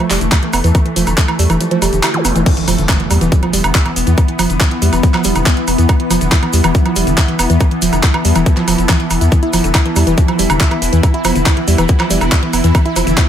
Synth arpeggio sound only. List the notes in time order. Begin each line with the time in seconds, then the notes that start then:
0.11 G3
0.21 D3
0.32 E4
0.43 E3
0.53 B3
0.64 E3
0.75 E3
0.86 E3
0.96 F3
1.07 D3
1.18 E4
1.28 E3
1.39 G3
1.50 E3
1.61 F3
1.71 F3
1.82 G3
1.93 D3
2.03 E4
2.14 E3
2.25 B3
2.36 E3
2.46 E3
2.57 E3
2.68 F3
2.78 D3
2.89 E4
3.00 E3
3.11 G3
3.21 E3
3.32 F3
3.43 F3
3.53 G3
3.64 D3
3.75 E4
3.86 E3
3.96 B3
4.07 E3
4.28 E3
4.39 F3
4.50 D3
4.61 E4
4.71 E3
4.82 G3
4.93 E3
5.03 F3
5.14 F3
5.25 G3
5.36 D3
5.46 E4
5.57 E3
5.68 B3
5.78 E3
5.89 E3
6.00 E3
6.10 F3
6.21 D3
6.32 E4
6.43 E3
6.53 G3
6.64 E3
6.75 F3
6.86 F3
6.96 G3
7.07 D3
7.18 E4
7.28 E3
7.39 B3
7.50 E3
7.61 E3
7.71 E3
7.82 F3
7.93 D3
8.03 E4
8.14 E3
8.25 G3
8.36 E3
8.46 F3
8.57 F3
8.68 F3
8.78 F3
8.89 E3
9.00 E3
9.11 E3
9.21 E4
9.32 E3
9.43 E4
9.53 F3
9.64 D3
9.75 E4
9.86 E3
9.96 G3
10.07 E3
10.18 F3
10.28 F3
10.39 G3
10.50 D3
10.60 E4
10.71 E3
10.82 B3
10.93 E3
11.03 E3
11.14 E4
11.25 F3
11.35 D3
11.46 E4
11.57 E3
11.68 G3
11.78 E3
11.89 F3
12.00 F3
12.10 G3
12.21 D3
12.32 E4
12.43 E3
12.53 B3
12.64 E3
12.75 E3
12.86 E4
12.96 F3
13.07 D3
13.18 E4